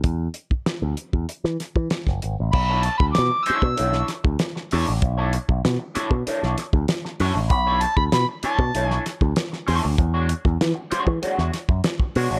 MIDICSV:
0, 0, Header, 1, 7, 480
1, 0, Start_track
1, 0, Tempo, 620476
1, 37, Time_signature, 4, 2, 24, 8
1, 9589, End_track
2, 0, Start_track
2, 0, Title_t, "Harmonica"
2, 0, Program_c, 0, 22
2, 1951, Note_on_c, 0, 83, 99
2, 2193, Note_on_c, 0, 81, 87
2, 2204, Note_off_c, 0, 83, 0
2, 2298, Note_off_c, 0, 81, 0
2, 2303, Note_on_c, 0, 83, 92
2, 2362, Note_off_c, 0, 83, 0
2, 2423, Note_on_c, 0, 86, 103
2, 2670, Note_on_c, 0, 88, 116
2, 2681, Note_off_c, 0, 86, 0
2, 3158, Note_off_c, 0, 88, 0
2, 5802, Note_on_c, 0, 83, 112
2, 6048, Note_on_c, 0, 81, 106
2, 6060, Note_off_c, 0, 83, 0
2, 6158, Note_off_c, 0, 81, 0
2, 6163, Note_on_c, 0, 83, 108
2, 6217, Note_off_c, 0, 83, 0
2, 6294, Note_on_c, 0, 83, 93
2, 6400, Note_off_c, 0, 83, 0
2, 6542, Note_on_c, 0, 81, 89
2, 6859, Note_off_c, 0, 81, 0
2, 6859, Note_on_c, 0, 80, 89
2, 6981, Note_off_c, 0, 80, 0
2, 9589, End_track
3, 0, Start_track
3, 0, Title_t, "Clean electric guitar"
3, 0, Program_c, 1, 27
3, 2086, Note_on_c, 1, 73, 80
3, 2090, Note_on_c, 1, 69, 72
3, 2093, Note_on_c, 1, 64, 68
3, 2098, Note_on_c, 1, 62, 68
3, 2194, Note_off_c, 1, 62, 0
3, 2198, Note_off_c, 1, 64, 0
3, 2201, Note_off_c, 1, 69, 0
3, 2202, Note_off_c, 1, 73, 0
3, 2678, Note_on_c, 1, 62, 87
3, 2680, Note_on_c, 1, 69, 107
3, 2681, Note_on_c, 1, 64, 102
3, 2684, Note_on_c, 1, 73, 96
3, 2796, Note_off_c, 1, 73, 0
3, 2798, Note_off_c, 1, 69, 0
3, 2804, Note_off_c, 1, 64, 0
3, 2837, Note_off_c, 1, 62, 0
3, 2915, Note_on_c, 1, 62, 90
3, 2919, Note_on_c, 1, 64, 76
3, 2921, Note_on_c, 1, 69, 77
3, 2923, Note_on_c, 1, 73, 78
3, 3141, Note_off_c, 1, 62, 0
3, 3144, Note_off_c, 1, 64, 0
3, 3144, Note_off_c, 1, 69, 0
3, 3146, Note_off_c, 1, 73, 0
3, 3655, Note_on_c, 1, 62, 100
3, 3655, Note_on_c, 1, 64, 95
3, 3655, Note_on_c, 1, 69, 105
3, 3659, Note_on_c, 1, 73, 104
3, 3765, Note_off_c, 1, 73, 0
3, 3766, Note_off_c, 1, 69, 0
3, 3770, Note_off_c, 1, 64, 0
3, 3794, Note_off_c, 1, 62, 0
3, 4004, Note_on_c, 1, 73, 91
3, 4009, Note_on_c, 1, 69, 86
3, 4014, Note_on_c, 1, 64, 72
3, 4018, Note_on_c, 1, 62, 66
3, 4119, Note_off_c, 1, 62, 0
3, 4119, Note_off_c, 1, 64, 0
3, 4120, Note_off_c, 1, 69, 0
3, 4125, Note_off_c, 1, 73, 0
3, 4602, Note_on_c, 1, 62, 83
3, 4605, Note_on_c, 1, 64, 102
3, 4606, Note_on_c, 1, 69, 99
3, 4611, Note_on_c, 1, 73, 97
3, 4720, Note_off_c, 1, 73, 0
3, 4723, Note_off_c, 1, 69, 0
3, 4725, Note_off_c, 1, 64, 0
3, 4747, Note_off_c, 1, 62, 0
3, 4848, Note_on_c, 1, 62, 85
3, 4857, Note_on_c, 1, 69, 90
3, 4858, Note_on_c, 1, 64, 80
3, 4861, Note_on_c, 1, 73, 82
3, 5067, Note_off_c, 1, 62, 0
3, 5072, Note_off_c, 1, 64, 0
3, 5072, Note_off_c, 1, 69, 0
3, 5074, Note_off_c, 1, 73, 0
3, 5572, Note_on_c, 1, 62, 94
3, 5572, Note_on_c, 1, 64, 89
3, 5578, Note_on_c, 1, 69, 93
3, 5580, Note_on_c, 1, 73, 110
3, 5682, Note_off_c, 1, 73, 0
3, 5689, Note_off_c, 1, 64, 0
3, 5689, Note_off_c, 1, 69, 0
3, 5711, Note_off_c, 1, 62, 0
3, 5930, Note_on_c, 1, 73, 91
3, 5935, Note_on_c, 1, 64, 75
3, 5936, Note_on_c, 1, 69, 83
3, 5940, Note_on_c, 1, 62, 76
3, 6049, Note_off_c, 1, 64, 0
3, 6051, Note_off_c, 1, 62, 0
3, 6056, Note_off_c, 1, 69, 0
3, 6058, Note_off_c, 1, 73, 0
3, 6527, Note_on_c, 1, 62, 91
3, 6533, Note_on_c, 1, 69, 91
3, 6534, Note_on_c, 1, 64, 91
3, 6537, Note_on_c, 1, 73, 106
3, 6654, Note_off_c, 1, 69, 0
3, 6654, Note_off_c, 1, 73, 0
3, 6656, Note_off_c, 1, 64, 0
3, 6668, Note_off_c, 1, 62, 0
3, 6769, Note_on_c, 1, 62, 73
3, 6774, Note_on_c, 1, 64, 83
3, 6777, Note_on_c, 1, 69, 85
3, 6781, Note_on_c, 1, 73, 94
3, 6986, Note_off_c, 1, 62, 0
3, 6989, Note_off_c, 1, 64, 0
3, 6990, Note_off_c, 1, 69, 0
3, 6992, Note_off_c, 1, 73, 0
3, 7477, Note_on_c, 1, 62, 93
3, 7484, Note_on_c, 1, 69, 103
3, 7485, Note_on_c, 1, 64, 90
3, 7487, Note_on_c, 1, 73, 107
3, 7596, Note_off_c, 1, 73, 0
3, 7599, Note_off_c, 1, 69, 0
3, 7606, Note_off_c, 1, 64, 0
3, 7634, Note_off_c, 1, 62, 0
3, 7843, Note_on_c, 1, 73, 80
3, 7845, Note_on_c, 1, 66, 79
3, 7848, Note_on_c, 1, 62, 76
3, 7852, Note_on_c, 1, 56, 75
3, 7952, Note_off_c, 1, 56, 0
3, 7954, Note_off_c, 1, 62, 0
3, 7956, Note_off_c, 1, 66, 0
3, 7956, Note_off_c, 1, 73, 0
3, 8437, Note_on_c, 1, 56, 82
3, 8441, Note_on_c, 1, 62, 91
3, 8445, Note_on_c, 1, 66, 94
3, 8447, Note_on_c, 1, 73, 98
3, 8548, Note_off_c, 1, 73, 0
3, 8551, Note_off_c, 1, 66, 0
3, 8555, Note_off_c, 1, 62, 0
3, 8593, Note_off_c, 1, 56, 0
3, 8680, Note_on_c, 1, 56, 82
3, 8685, Note_on_c, 1, 66, 85
3, 8686, Note_on_c, 1, 62, 71
3, 8688, Note_on_c, 1, 73, 77
3, 8899, Note_off_c, 1, 56, 0
3, 8901, Note_off_c, 1, 66, 0
3, 8902, Note_off_c, 1, 62, 0
3, 8903, Note_off_c, 1, 73, 0
3, 9408, Note_on_c, 1, 62, 74
3, 9409, Note_on_c, 1, 56, 73
3, 9410, Note_on_c, 1, 66, 86
3, 9415, Note_on_c, 1, 73, 86
3, 9513, Note_off_c, 1, 62, 0
3, 9513, Note_off_c, 1, 73, 0
3, 9514, Note_off_c, 1, 56, 0
3, 9514, Note_off_c, 1, 66, 0
3, 9522, Note_on_c, 1, 73, 74
3, 9525, Note_on_c, 1, 66, 64
3, 9528, Note_on_c, 1, 62, 60
3, 9531, Note_on_c, 1, 56, 52
3, 9589, Note_off_c, 1, 56, 0
3, 9589, Note_off_c, 1, 62, 0
3, 9589, Note_off_c, 1, 66, 0
3, 9589, Note_off_c, 1, 73, 0
3, 9589, End_track
4, 0, Start_track
4, 0, Title_t, "Picked electric bass"
4, 0, Program_c, 2, 34
4, 30, Note_on_c, 2, 40, 94
4, 209, Note_off_c, 2, 40, 0
4, 635, Note_on_c, 2, 38, 80
4, 725, Note_off_c, 2, 38, 0
4, 877, Note_on_c, 2, 40, 79
4, 966, Note_off_c, 2, 40, 0
4, 1117, Note_on_c, 2, 52, 81
4, 1207, Note_off_c, 2, 52, 0
4, 1361, Note_on_c, 2, 52, 84
4, 1449, Note_off_c, 2, 52, 0
4, 1602, Note_on_c, 2, 30, 88
4, 1690, Note_off_c, 2, 30, 0
4, 1733, Note_on_c, 2, 32, 78
4, 1817, Note_off_c, 2, 32, 0
4, 1858, Note_on_c, 2, 33, 85
4, 1941, Note_off_c, 2, 33, 0
4, 1960, Note_on_c, 2, 35, 113
4, 2225, Note_off_c, 2, 35, 0
4, 2321, Note_on_c, 2, 38, 92
4, 2410, Note_off_c, 2, 38, 0
4, 2462, Note_on_c, 2, 47, 110
4, 2544, Note_off_c, 2, 47, 0
4, 2805, Note_on_c, 2, 47, 89
4, 2893, Note_off_c, 2, 47, 0
4, 2937, Note_on_c, 2, 35, 95
4, 3109, Note_off_c, 2, 35, 0
4, 3285, Note_on_c, 2, 38, 91
4, 3373, Note_off_c, 2, 38, 0
4, 3659, Note_on_c, 2, 40, 85
4, 3742, Note_off_c, 2, 40, 0
4, 3779, Note_on_c, 2, 33, 85
4, 3862, Note_off_c, 2, 33, 0
4, 3888, Note_on_c, 2, 35, 98
4, 4151, Note_off_c, 2, 35, 0
4, 4247, Note_on_c, 2, 35, 87
4, 4334, Note_off_c, 2, 35, 0
4, 4374, Note_on_c, 2, 47, 110
4, 4459, Note_off_c, 2, 47, 0
4, 4725, Note_on_c, 2, 47, 110
4, 4813, Note_off_c, 2, 47, 0
4, 4976, Note_on_c, 2, 35, 90
4, 5060, Note_off_c, 2, 35, 0
4, 5209, Note_on_c, 2, 38, 91
4, 5296, Note_off_c, 2, 38, 0
4, 5570, Note_on_c, 2, 42, 80
4, 5656, Note_off_c, 2, 42, 0
4, 5690, Note_on_c, 2, 33, 86
4, 5805, Note_off_c, 2, 33, 0
4, 5805, Note_on_c, 2, 35, 113
4, 6068, Note_off_c, 2, 35, 0
4, 6169, Note_on_c, 2, 38, 90
4, 6255, Note_off_c, 2, 38, 0
4, 6289, Note_on_c, 2, 47, 105
4, 6375, Note_off_c, 2, 47, 0
4, 6645, Note_on_c, 2, 47, 96
4, 6732, Note_off_c, 2, 47, 0
4, 6769, Note_on_c, 2, 35, 94
4, 6942, Note_off_c, 2, 35, 0
4, 7129, Note_on_c, 2, 38, 95
4, 7214, Note_off_c, 2, 38, 0
4, 7491, Note_on_c, 2, 40, 86
4, 7575, Note_off_c, 2, 40, 0
4, 7619, Note_on_c, 2, 38, 89
4, 7700, Note_off_c, 2, 38, 0
4, 7724, Note_on_c, 2, 40, 101
4, 7985, Note_off_c, 2, 40, 0
4, 8087, Note_on_c, 2, 40, 92
4, 8172, Note_off_c, 2, 40, 0
4, 8209, Note_on_c, 2, 52, 95
4, 8293, Note_off_c, 2, 52, 0
4, 8565, Note_on_c, 2, 52, 100
4, 8650, Note_off_c, 2, 52, 0
4, 8807, Note_on_c, 2, 40, 80
4, 8891, Note_off_c, 2, 40, 0
4, 9043, Note_on_c, 2, 42, 82
4, 9128, Note_off_c, 2, 42, 0
4, 9406, Note_on_c, 2, 47, 93
4, 9490, Note_off_c, 2, 47, 0
4, 9522, Note_on_c, 2, 33, 85
4, 9589, Note_off_c, 2, 33, 0
4, 9589, End_track
5, 0, Start_track
5, 0, Title_t, "Muted clean electric guitar strokes"
5, 1962, Note_on_c, 9, 29, 40
5, 2039, Note_off_c, 9, 29, 0
5, 2204, Note_on_c, 9, 29, 51
5, 2281, Note_off_c, 9, 29, 0
5, 2326, Note_on_c, 9, 29, 58
5, 2403, Note_off_c, 9, 29, 0
5, 2562, Note_on_c, 9, 29, 49
5, 2639, Note_off_c, 9, 29, 0
5, 2806, Note_on_c, 9, 29, 42
5, 2883, Note_off_c, 9, 29, 0
5, 3174, Note_on_c, 9, 29, 46
5, 3251, Note_off_c, 9, 29, 0
5, 3280, Note_on_c, 9, 29, 57
5, 3358, Note_off_c, 9, 29, 0
5, 3409, Note_on_c, 9, 29, 48
5, 3486, Note_off_c, 9, 29, 0
5, 3525, Note_on_c, 9, 29, 41
5, 3602, Note_off_c, 9, 29, 0
5, 3775, Note_on_c, 9, 29, 59
5, 3852, Note_off_c, 9, 29, 0
5, 3893, Note_on_c, 9, 29, 44
5, 3970, Note_off_c, 9, 29, 0
5, 4128, Note_on_c, 9, 29, 55
5, 4206, Note_off_c, 9, 29, 0
5, 4244, Note_on_c, 9, 29, 47
5, 4322, Note_off_c, 9, 29, 0
5, 4480, Note_on_c, 9, 29, 44
5, 4558, Note_off_c, 9, 29, 0
5, 4729, Note_on_c, 9, 29, 50
5, 4807, Note_off_c, 9, 29, 0
5, 5100, Note_on_c, 9, 29, 46
5, 5178, Note_off_c, 9, 29, 0
5, 5208, Note_on_c, 9, 29, 50
5, 5285, Note_off_c, 9, 29, 0
5, 5325, Note_on_c, 9, 29, 50
5, 5402, Note_off_c, 9, 29, 0
5, 5451, Note_on_c, 9, 29, 52
5, 5529, Note_off_c, 9, 29, 0
5, 5691, Note_on_c, 9, 29, 61
5, 5768, Note_off_c, 9, 29, 0
5, 5814, Note_on_c, 9, 29, 41
5, 5892, Note_off_c, 9, 29, 0
5, 6059, Note_on_c, 9, 29, 56
5, 6136, Note_off_c, 9, 29, 0
5, 6171, Note_on_c, 9, 29, 53
5, 6248, Note_off_c, 9, 29, 0
5, 6410, Note_on_c, 9, 29, 46
5, 6488, Note_off_c, 9, 29, 0
5, 6663, Note_on_c, 9, 29, 46
5, 6740, Note_off_c, 9, 29, 0
5, 7010, Note_on_c, 9, 29, 42
5, 7088, Note_off_c, 9, 29, 0
5, 7132, Note_on_c, 9, 29, 56
5, 7209, Note_off_c, 9, 29, 0
5, 7251, Note_on_c, 9, 29, 49
5, 7328, Note_off_c, 9, 29, 0
5, 7363, Note_on_c, 9, 29, 36
5, 7441, Note_off_c, 9, 29, 0
5, 7605, Note_on_c, 9, 29, 59
5, 7682, Note_off_c, 9, 29, 0
5, 7729, Note_on_c, 9, 29, 47
5, 7807, Note_off_c, 9, 29, 0
5, 7961, Note_on_c, 9, 29, 46
5, 8039, Note_off_c, 9, 29, 0
5, 8085, Note_on_c, 9, 29, 57
5, 8163, Note_off_c, 9, 29, 0
5, 8312, Note_on_c, 9, 29, 49
5, 8389, Note_off_c, 9, 29, 0
5, 8557, Note_on_c, 9, 29, 54
5, 8634, Note_off_c, 9, 29, 0
5, 8915, Note_on_c, 9, 29, 38
5, 8992, Note_off_c, 9, 29, 0
5, 9042, Note_on_c, 9, 29, 50
5, 9119, Note_off_c, 9, 29, 0
5, 9165, Note_on_c, 9, 29, 42
5, 9243, Note_off_c, 9, 29, 0
5, 9281, Note_on_c, 9, 29, 53
5, 9358, Note_off_c, 9, 29, 0
5, 9589, End_track
6, 0, Start_track
6, 0, Title_t, "Muted picked electric bass strokes"
6, 396, Note_on_c, 9, 29, 38
6, 473, Note_off_c, 9, 29, 0
6, 2705, Note_on_c, 9, 29, 53
6, 2783, Note_off_c, 9, 29, 0
6, 4614, Note_on_c, 9, 29, 51
6, 4691, Note_off_c, 9, 29, 0
6, 4854, Note_on_c, 9, 29, 53
6, 4931, Note_off_c, 9, 29, 0
6, 6526, Note_on_c, 9, 29, 53
6, 6604, Note_off_c, 9, 29, 0
6, 8449, Note_on_c, 9, 29, 53
6, 8526, Note_off_c, 9, 29, 0
6, 8691, Note_on_c, 9, 29, 51
6, 8769, Note_off_c, 9, 29, 0
6, 9589, End_track
7, 0, Start_track
7, 0, Title_t, "Drums"
7, 28, Note_on_c, 9, 42, 78
7, 30, Note_on_c, 9, 36, 103
7, 105, Note_off_c, 9, 42, 0
7, 108, Note_off_c, 9, 36, 0
7, 262, Note_on_c, 9, 42, 72
7, 340, Note_off_c, 9, 42, 0
7, 394, Note_on_c, 9, 36, 85
7, 471, Note_off_c, 9, 36, 0
7, 513, Note_on_c, 9, 38, 103
7, 513, Note_on_c, 9, 42, 68
7, 590, Note_off_c, 9, 38, 0
7, 591, Note_off_c, 9, 42, 0
7, 751, Note_on_c, 9, 42, 58
7, 828, Note_off_c, 9, 42, 0
7, 877, Note_on_c, 9, 36, 80
7, 954, Note_off_c, 9, 36, 0
7, 997, Note_on_c, 9, 42, 75
7, 1074, Note_off_c, 9, 42, 0
7, 1121, Note_on_c, 9, 38, 30
7, 1198, Note_off_c, 9, 38, 0
7, 1238, Note_on_c, 9, 42, 64
7, 1240, Note_on_c, 9, 38, 34
7, 1315, Note_off_c, 9, 42, 0
7, 1317, Note_off_c, 9, 38, 0
7, 1359, Note_on_c, 9, 36, 85
7, 1436, Note_off_c, 9, 36, 0
7, 1473, Note_on_c, 9, 42, 70
7, 1476, Note_on_c, 9, 38, 108
7, 1550, Note_off_c, 9, 42, 0
7, 1554, Note_off_c, 9, 38, 0
7, 1598, Note_on_c, 9, 36, 93
7, 1600, Note_on_c, 9, 38, 36
7, 1676, Note_off_c, 9, 36, 0
7, 1677, Note_off_c, 9, 38, 0
7, 1719, Note_on_c, 9, 42, 72
7, 1796, Note_off_c, 9, 42, 0
7, 1957, Note_on_c, 9, 49, 87
7, 1961, Note_on_c, 9, 36, 118
7, 2034, Note_off_c, 9, 49, 0
7, 2039, Note_off_c, 9, 36, 0
7, 2191, Note_on_c, 9, 42, 82
7, 2268, Note_off_c, 9, 42, 0
7, 2321, Note_on_c, 9, 36, 103
7, 2398, Note_off_c, 9, 36, 0
7, 2435, Note_on_c, 9, 38, 114
7, 2436, Note_on_c, 9, 42, 86
7, 2513, Note_off_c, 9, 38, 0
7, 2513, Note_off_c, 9, 42, 0
7, 2675, Note_on_c, 9, 42, 73
7, 2753, Note_off_c, 9, 42, 0
7, 2801, Note_on_c, 9, 36, 86
7, 2879, Note_off_c, 9, 36, 0
7, 2920, Note_on_c, 9, 42, 96
7, 2998, Note_off_c, 9, 42, 0
7, 3038, Note_on_c, 9, 38, 35
7, 3116, Note_off_c, 9, 38, 0
7, 3158, Note_on_c, 9, 42, 73
7, 3160, Note_on_c, 9, 38, 36
7, 3236, Note_off_c, 9, 42, 0
7, 3238, Note_off_c, 9, 38, 0
7, 3284, Note_on_c, 9, 36, 102
7, 3362, Note_off_c, 9, 36, 0
7, 3397, Note_on_c, 9, 42, 86
7, 3401, Note_on_c, 9, 38, 121
7, 3475, Note_off_c, 9, 42, 0
7, 3479, Note_off_c, 9, 38, 0
7, 3531, Note_on_c, 9, 38, 37
7, 3608, Note_off_c, 9, 38, 0
7, 3644, Note_on_c, 9, 46, 85
7, 3722, Note_off_c, 9, 46, 0
7, 3884, Note_on_c, 9, 42, 85
7, 3885, Note_on_c, 9, 36, 121
7, 3961, Note_off_c, 9, 42, 0
7, 3963, Note_off_c, 9, 36, 0
7, 4123, Note_on_c, 9, 42, 82
7, 4201, Note_off_c, 9, 42, 0
7, 4246, Note_on_c, 9, 36, 94
7, 4324, Note_off_c, 9, 36, 0
7, 4369, Note_on_c, 9, 38, 118
7, 4370, Note_on_c, 9, 42, 72
7, 4447, Note_off_c, 9, 38, 0
7, 4447, Note_off_c, 9, 42, 0
7, 4605, Note_on_c, 9, 42, 76
7, 4683, Note_off_c, 9, 42, 0
7, 4725, Note_on_c, 9, 36, 88
7, 4802, Note_off_c, 9, 36, 0
7, 4850, Note_on_c, 9, 42, 87
7, 4927, Note_off_c, 9, 42, 0
7, 4975, Note_on_c, 9, 38, 36
7, 5052, Note_off_c, 9, 38, 0
7, 5088, Note_on_c, 9, 42, 78
7, 5090, Note_on_c, 9, 38, 40
7, 5165, Note_off_c, 9, 42, 0
7, 5167, Note_off_c, 9, 38, 0
7, 5207, Note_on_c, 9, 36, 109
7, 5285, Note_off_c, 9, 36, 0
7, 5325, Note_on_c, 9, 42, 83
7, 5328, Note_on_c, 9, 38, 115
7, 5402, Note_off_c, 9, 42, 0
7, 5406, Note_off_c, 9, 38, 0
7, 5456, Note_on_c, 9, 38, 36
7, 5534, Note_off_c, 9, 38, 0
7, 5568, Note_on_c, 9, 46, 73
7, 5645, Note_off_c, 9, 46, 0
7, 5803, Note_on_c, 9, 42, 84
7, 5804, Note_on_c, 9, 36, 124
7, 5880, Note_off_c, 9, 42, 0
7, 5882, Note_off_c, 9, 36, 0
7, 6042, Note_on_c, 9, 42, 93
7, 6119, Note_off_c, 9, 42, 0
7, 6164, Note_on_c, 9, 36, 101
7, 6241, Note_off_c, 9, 36, 0
7, 6284, Note_on_c, 9, 38, 116
7, 6284, Note_on_c, 9, 42, 89
7, 6361, Note_off_c, 9, 38, 0
7, 6361, Note_off_c, 9, 42, 0
7, 6520, Note_on_c, 9, 42, 80
7, 6598, Note_off_c, 9, 42, 0
7, 6643, Note_on_c, 9, 36, 87
7, 6720, Note_off_c, 9, 36, 0
7, 6766, Note_on_c, 9, 42, 91
7, 6844, Note_off_c, 9, 42, 0
7, 6890, Note_on_c, 9, 38, 34
7, 6967, Note_off_c, 9, 38, 0
7, 7008, Note_on_c, 9, 42, 75
7, 7011, Note_on_c, 9, 38, 35
7, 7086, Note_off_c, 9, 42, 0
7, 7088, Note_off_c, 9, 38, 0
7, 7125, Note_on_c, 9, 36, 97
7, 7202, Note_off_c, 9, 36, 0
7, 7242, Note_on_c, 9, 42, 86
7, 7246, Note_on_c, 9, 38, 113
7, 7320, Note_off_c, 9, 42, 0
7, 7323, Note_off_c, 9, 38, 0
7, 7372, Note_on_c, 9, 38, 39
7, 7449, Note_off_c, 9, 38, 0
7, 7486, Note_on_c, 9, 46, 82
7, 7563, Note_off_c, 9, 46, 0
7, 7724, Note_on_c, 9, 36, 109
7, 7724, Note_on_c, 9, 42, 90
7, 7801, Note_off_c, 9, 36, 0
7, 7801, Note_off_c, 9, 42, 0
7, 7961, Note_on_c, 9, 42, 86
7, 8039, Note_off_c, 9, 42, 0
7, 8084, Note_on_c, 9, 36, 103
7, 8161, Note_off_c, 9, 36, 0
7, 8208, Note_on_c, 9, 38, 115
7, 8209, Note_on_c, 9, 42, 82
7, 8285, Note_off_c, 9, 38, 0
7, 8286, Note_off_c, 9, 42, 0
7, 8444, Note_on_c, 9, 42, 78
7, 8522, Note_off_c, 9, 42, 0
7, 8561, Note_on_c, 9, 36, 77
7, 8639, Note_off_c, 9, 36, 0
7, 8685, Note_on_c, 9, 42, 86
7, 8763, Note_off_c, 9, 42, 0
7, 8808, Note_on_c, 9, 38, 35
7, 8885, Note_off_c, 9, 38, 0
7, 8924, Note_on_c, 9, 42, 72
7, 8926, Note_on_c, 9, 38, 40
7, 9001, Note_off_c, 9, 42, 0
7, 9003, Note_off_c, 9, 38, 0
7, 9042, Note_on_c, 9, 36, 105
7, 9119, Note_off_c, 9, 36, 0
7, 9158, Note_on_c, 9, 42, 87
7, 9162, Note_on_c, 9, 38, 115
7, 9236, Note_off_c, 9, 42, 0
7, 9240, Note_off_c, 9, 38, 0
7, 9280, Note_on_c, 9, 36, 98
7, 9357, Note_off_c, 9, 36, 0
7, 9403, Note_on_c, 9, 46, 80
7, 9480, Note_off_c, 9, 46, 0
7, 9589, End_track
0, 0, End_of_file